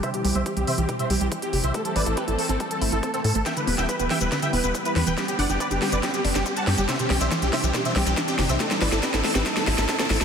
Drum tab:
HH |xxoxxxoxxxoxxxox|xxoxxxoxxxoxxxox|xxoxxxoxxxoxxxox|xxoxxxoxxxoxxxox|
SH |----------------|----------------|xx-xxx-xxx-xxx-x|xx-xxx-xxx-xxx-x|
SD |----------------|----------------|o--o--o-o-----o-|o-----o-o--o--o-|
BD |o---o---o---o---|o-o-o---o---o---|o---o---o---o---|o---o---o---o---|

HH |xxoxxxoxxxoxxxox|xxoxxxo-xxoxxxo-|
SH |xx-xxx-xxx-xxx-x|xx-xxx-xxx-xxx-x|
SD |o-o-o-o-o-o-o-o-|oooooooooooooooo|
BD |o---o---o---o---|o-o-o---o---o---|